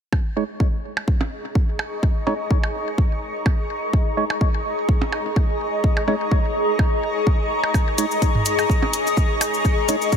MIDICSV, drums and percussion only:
0, 0, Header, 1, 3, 480
1, 0, Start_track
1, 0, Tempo, 476190
1, 126, Time_signature, 4, 2, 24, 8
1, 10249, End_track
2, 0, Start_track
2, 0, Title_t, "Percussion blips"
2, 127, Note_on_c, 9, 76, 62
2, 227, Note_off_c, 9, 76, 0
2, 977, Note_on_c, 9, 76, 62
2, 1077, Note_off_c, 9, 76, 0
2, 1216, Note_on_c, 9, 63, 71
2, 1317, Note_off_c, 9, 63, 0
2, 1806, Note_on_c, 9, 76, 58
2, 1907, Note_off_c, 9, 76, 0
2, 2286, Note_on_c, 9, 63, 51
2, 2387, Note_off_c, 9, 63, 0
2, 2656, Note_on_c, 9, 76, 61
2, 2757, Note_off_c, 9, 76, 0
2, 3486, Note_on_c, 9, 76, 58
2, 3587, Note_off_c, 9, 76, 0
2, 4336, Note_on_c, 9, 76, 61
2, 4437, Note_off_c, 9, 76, 0
2, 5056, Note_on_c, 9, 63, 84
2, 5156, Note_off_c, 9, 63, 0
2, 5166, Note_on_c, 9, 76, 59
2, 5267, Note_off_c, 9, 76, 0
2, 6016, Note_on_c, 9, 76, 61
2, 6116, Note_off_c, 9, 76, 0
2, 6126, Note_on_c, 9, 63, 50
2, 6226, Note_off_c, 9, 63, 0
2, 6845, Note_on_c, 9, 76, 60
2, 6946, Note_off_c, 9, 76, 0
2, 7696, Note_on_c, 9, 76, 59
2, 7797, Note_off_c, 9, 76, 0
2, 7805, Note_on_c, 9, 76, 63
2, 7906, Note_off_c, 9, 76, 0
2, 8656, Note_on_c, 9, 76, 58
2, 8756, Note_off_c, 9, 76, 0
2, 8896, Note_on_c, 9, 63, 75
2, 8996, Note_off_c, 9, 63, 0
2, 9485, Note_on_c, 9, 76, 64
2, 9586, Note_off_c, 9, 76, 0
2, 9965, Note_on_c, 9, 63, 48
2, 10066, Note_off_c, 9, 63, 0
2, 10249, End_track
3, 0, Start_track
3, 0, Title_t, "Drums"
3, 126, Note_on_c, 9, 36, 110
3, 227, Note_off_c, 9, 36, 0
3, 606, Note_on_c, 9, 36, 104
3, 707, Note_off_c, 9, 36, 0
3, 1086, Note_on_c, 9, 36, 110
3, 1187, Note_off_c, 9, 36, 0
3, 1566, Note_on_c, 9, 36, 119
3, 1667, Note_off_c, 9, 36, 0
3, 2046, Note_on_c, 9, 36, 113
3, 2147, Note_off_c, 9, 36, 0
3, 2526, Note_on_c, 9, 36, 115
3, 2627, Note_off_c, 9, 36, 0
3, 3006, Note_on_c, 9, 36, 116
3, 3107, Note_off_c, 9, 36, 0
3, 3486, Note_on_c, 9, 36, 127
3, 3586, Note_off_c, 9, 36, 0
3, 3966, Note_on_c, 9, 36, 113
3, 4066, Note_off_c, 9, 36, 0
3, 4446, Note_on_c, 9, 36, 120
3, 4546, Note_off_c, 9, 36, 0
3, 4926, Note_on_c, 9, 36, 125
3, 5026, Note_off_c, 9, 36, 0
3, 5406, Note_on_c, 9, 36, 123
3, 5506, Note_off_c, 9, 36, 0
3, 5885, Note_on_c, 9, 36, 114
3, 5986, Note_off_c, 9, 36, 0
3, 6365, Note_on_c, 9, 36, 116
3, 6466, Note_off_c, 9, 36, 0
3, 6845, Note_on_c, 9, 36, 118
3, 6946, Note_off_c, 9, 36, 0
3, 7325, Note_on_c, 9, 36, 121
3, 7426, Note_off_c, 9, 36, 0
3, 7805, Note_on_c, 9, 36, 110
3, 7807, Note_on_c, 9, 69, 43
3, 7906, Note_off_c, 9, 36, 0
3, 7908, Note_off_c, 9, 69, 0
3, 8046, Note_on_c, 9, 42, 87
3, 8047, Note_on_c, 9, 69, 90
3, 8147, Note_off_c, 9, 42, 0
3, 8148, Note_off_c, 9, 69, 0
3, 8178, Note_on_c, 9, 69, 49
3, 8278, Note_off_c, 9, 69, 0
3, 8285, Note_on_c, 9, 36, 108
3, 8286, Note_on_c, 9, 42, 35
3, 8288, Note_on_c, 9, 69, 36
3, 8386, Note_off_c, 9, 36, 0
3, 8387, Note_off_c, 9, 42, 0
3, 8389, Note_off_c, 9, 69, 0
3, 8416, Note_on_c, 9, 45, 86
3, 8517, Note_off_c, 9, 45, 0
3, 8523, Note_on_c, 9, 69, 89
3, 8526, Note_on_c, 9, 42, 89
3, 8624, Note_off_c, 9, 69, 0
3, 8627, Note_off_c, 9, 42, 0
3, 8654, Note_on_c, 9, 69, 51
3, 8755, Note_off_c, 9, 69, 0
3, 8765, Note_on_c, 9, 36, 119
3, 8777, Note_on_c, 9, 69, 34
3, 8866, Note_off_c, 9, 36, 0
3, 8878, Note_off_c, 9, 69, 0
3, 9005, Note_on_c, 9, 69, 76
3, 9006, Note_on_c, 9, 42, 88
3, 9106, Note_off_c, 9, 69, 0
3, 9107, Note_off_c, 9, 42, 0
3, 9141, Note_on_c, 9, 69, 52
3, 9242, Note_off_c, 9, 69, 0
3, 9243, Note_on_c, 9, 69, 37
3, 9245, Note_on_c, 9, 36, 120
3, 9344, Note_off_c, 9, 69, 0
3, 9346, Note_off_c, 9, 36, 0
3, 9486, Note_on_c, 9, 42, 88
3, 9490, Note_on_c, 9, 69, 94
3, 9587, Note_off_c, 9, 42, 0
3, 9591, Note_off_c, 9, 69, 0
3, 9616, Note_on_c, 9, 69, 48
3, 9717, Note_off_c, 9, 69, 0
3, 9724, Note_on_c, 9, 69, 35
3, 9725, Note_on_c, 9, 36, 109
3, 9825, Note_off_c, 9, 69, 0
3, 9826, Note_off_c, 9, 36, 0
3, 9965, Note_on_c, 9, 69, 94
3, 9966, Note_on_c, 9, 42, 86
3, 10066, Note_off_c, 9, 69, 0
3, 10067, Note_off_c, 9, 42, 0
3, 10097, Note_on_c, 9, 69, 49
3, 10198, Note_off_c, 9, 69, 0
3, 10202, Note_on_c, 9, 69, 33
3, 10206, Note_on_c, 9, 36, 107
3, 10206, Note_on_c, 9, 42, 34
3, 10249, Note_off_c, 9, 36, 0
3, 10249, Note_off_c, 9, 42, 0
3, 10249, Note_off_c, 9, 69, 0
3, 10249, End_track
0, 0, End_of_file